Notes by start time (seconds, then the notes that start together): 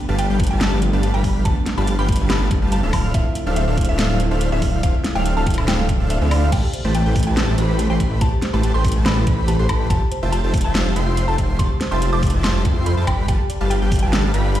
Already playing: F3 A3 B3 D4 G5
0.09 G1 G3 G4 B4 F5 A5
0.19 G5, closed hi-hat
0.30 G1 G3 G4 B4 F5 G5
0.39 F3 A3 B3 D4, kick, closed hi-hat
0.43 closed hi-hat
0.47 G5, closed hi-hat
0.51 G1 G3 G4 B4 F5 A5
0.61 snare, closed hi-hat
0.80 F3 A3 B3, closed hi-hat
0.84 D4
0.93 G1 G3 G4 B4 F5 A5
1.03 closed hi-hat
1.14 G1 G3 G4 B4 F5 G5 B5
1.24 kick, open hi-hat
1.43 G1 F3 G3 A3 B3 D4 G4 B4 F5 A5, kick, closed hi-hat
1.66 snare, closed hi-hat
1.78 G1 G3 G4 B4 F5 A5 B5
1.87 closed hi-hat
1.99 G1 G3 G4 B4 F5 G5 B5
2.07 F3 A3 B3, kick, closed hi-hat
2.11 D4, closed hi-hat
2.16 G1, closed hi-hat
2.20 G3 G4 B4 F5 A5
2.30 B5, snare, closed hi-hat
2.51 kick, closed hi-hat
2.61 G1 F3 G3 A3 B3 D4 G4 B4 F5 A5
2.72 A5, closed hi-hat
2.83 D1 D4 A4 C5 E5 F5
2.93 A5, kick, open hi-hat, high woodblock
3.12 D1 F3 A3 C4 D4 A4 C5 E5 F5, kick, closed hi-hat
3.16 E4
3.35 closed hi-hat
3.46 D1 D4 A4 C5 E5 F5
3.56 E5, closed hi-hat
3.68 D1 D4 A4 C5 E5 F5
3.77 F3 A3 C4 E4, kick, closed hi-hat
3.81 closed hi-hat
3.85 closed hi-hat
3.89 D1 D4 A4 C5 E5 F5
3.99 snare, closed hi-hat
4.18 F3 A3 C4, closed hi-hat
4.22 E4
4.31 D1 D4 A4 C5 E5 F5
4.41 closed hi-hat
4.52 D1 D4 A4 C5 E5 F5
4.62 kick, open hi-hat
4.82 D1 F3 A3 C4 D4 E4 A4 C5 E5 F5, kick, closed hi-hat
5.04 snare, closed hi-hat
5.15 D1 D4 A4 C5 E5 F5 G5
5.26 closed hi-hat
5.37 D1 D4 A4 C5 E5 F5 A5
5.45 F3 A3 C4 E4, kick, closed hi-hat
5.50 closed hi-hat
5.54 F5, closed hi-hat
5.58 D1 D4 A4 C5 E5 F5, high woodblock
5.68 G5, snare, closed hi-hat
5.89 kick, closed hi-hat
6.00 D1 D4 A4 C5 E5 F5
6.10 E5, closed hi-hat
6.20 D2 F3 A3 C4 D4 E4 A4 C5 E5 F5
6.31 D5, open hi-hat, high woodblock
6.52 A1 A3 G4 B4 C5 G5 A5, kick, closed hi-hat, crash
6.63 G4
6.73 C5, closed hi-hat
6.84 A1 A3 G4 B4 C5 E5 A5
6.95 G4 G5, closed hi-hat
7.06 A1 A3 G4 A4 B4 C5 G5
7.16 kick, closed hi-hat, open hi-hat
7.23 A5, closed hi-hat
7.27 A1 A3 G4 B4 C5 E5 G5 A5
7.37 G4, snare, closed hi-hat
7.48 G4
7.58 A1 A3 G4 B4 C5 B5, closed hi-hat
7.69 E5
7.79 G4, closed hi-hat
7.90 A1 A3 G4 A4 B4 C5 G5 C6
8.00 A1 A3 G4 B4 C5 B5, kick, closed hi-hat
8.11 E5
8.21 A1 A3 G4 B4 C5 A5, kick, closed hi-hat
8.32 G4
8.42 C5, snare, closed hi-hat
8.53 A1 A3 G4 B4 C5 E5 A5 B5
8.63 G4, closed hi-hat
8.74 A1 A3 G4 A4 B4 C5 G5 C6
8.85 G4, kick, closed hi-hat, open hi-hat
8.92 closed hi-hat
8.96 A1 A3 G4 B4 C5 E5 A5
9.06 G4 B5, snare, closed hi-hat
9.17 G4
9.27 A1 A3 B4 C5 B5, kick, closed hi-hat
9.38 E5
9.48 G4 A5, closed hi-hat
9.59 A1 A3 G4 A4 B4 C5 C6
9.69 A1 G4 B4 C5 A5 B5, kick, closed hi-hat, high woodblock
9.80 E5
9.90 F1 F4 G4 C5 E5 G5 A5, kick, closed hi-hat
10.01 G4
10.11 C5, closed hi-hat
10.22 F1 F4 C5 E5 G5 A5
10.32 G4 A5, closed hi-hat
10.44 F1 F4 A4 C5 E5 G5 A5
10.54 G4, kick, closed hi-hat, open hi-hat
10.61 F1 F4 C5 E5 G5 A5, closed hi-hat
10.75 G4, snare, closed hi-hat
10.86 G4
10.96 F1 F4 C5 E5 G5 C6, closed hi-hat
11.07 E5
11.17 G4, closed hi-hat
11.28 F1 F4 A4 C5 E5 G5 A5
11.38 F1 F4 G4 C5 E5 G5 C6, kick, closed hi-hat
11.49 E5
11.59 F1 F4 G4 C5 E5 G5 A5 C6, kick, closed hi-hat
11.70 G4
11.81 C5, snare, closed hi-hat
11.91 F1 F4 C5 E5 G5 A5 C6
12.02 G4, closed hi-hat
12.13 F1 F4 A4 C5 E5 G5 A5 D6
12.23 G4, kick, closed hi-hat, open hi-hat
12.30 F4 C5 E5 G5 A5, closed hi-hat
12.34 F1
12.44 G4 C6, snare, closed hi-hat
12.55 G4
12.65 F2 F4 C5 G5 C6, kick, closed hi-hat
12.76 E5
12.86 A4 B5, closed hi-hat
12.97 F2 F4 C5 E5 G5 A5
13.07 G1 G3 G4 B4 F5 G5 B5, kick, closed hi-hat, high woodblock
13.18 B5
13.28 G1 G3 G4 B4 F5 G5 A5, kick, closed hi-hat
13.40 G4
13.50 D5, closed hi-hat
13.60 G1 G3 G4 B4 F5 A5
13.70 G4 G5, closed hi-hat
13.82 G1 G3 G4 B4 F5 G5
13.92 G4, kick, closed hi-hat, open hi-hat
13.99 G1 F5 G5 A5, closed hi-hat
14.03 G3 G4 B4 F5 A5
14.13 G4, snare, closed hi-hat
14.24 G4
14.34 G1 G3 G4 B4 D5 F5 B5, closed hi-hat
14.45 F5
14.55 G4, closed hi-hat